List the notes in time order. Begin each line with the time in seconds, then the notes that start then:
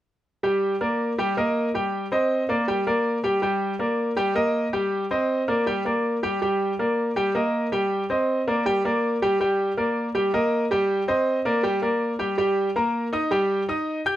0.43 G3 G4 G5
0.81 A#3 A#4 D5
1.18 G3 G4 G5
1.37 A#3 A#4 D#5
1.74 G3 G4 G5
2.12 C4 C5 D#5
2.49 A#3 A#4 D5
2.68 G3 G4 G5
2.87 A#3 A#4 D5
3.24 G3 G4 G5
3.42 G3 G4 G5
3.79 A#3 A#4 D5
4.16 G3 G4 G5
4.35 A#3 A#4 D#5
4.73 G3 G4 G5
5.11 C4 C5 D#5
5.48 A#3 A#4 D5
5.66 G3 G4 G5
5.85 A#3 A#4 D5
6.23 G3 G4 G5
6.42 G3 G4 G5
6.79 A#3 A#4 D5
7.16 G3 G4 G5
7.35 A#3 A#4 D#5
7.72 G3 G4 G5
8.10 C4 C5 D#5
8.47 A#3 A#4 D5
8.66 G3 G4 G5
8.85 A#3 A#4 D5
9.22 G3 G4 G5
9.40 G3 G4 G5
9.77 A#3 A#4 D5
10.15 G3 G4 G5
10.34 A#3 A#4 D#5
10.71 G3 G4 G5
11.08 C4 C5 D#5
11.45 A#3 A#4 D5
11.63 G3 G4 G5
11.82 A#3 A#4 D5
12.19 G3 G4 G5
12.38 G3 G4 G5
12.76 A#3 A#4 A#5
13.13 D#4 D#5 D#6
13.31 G3 G4 G5
13.69 D#4 D#5 D#6
14.06 G4 G5 G6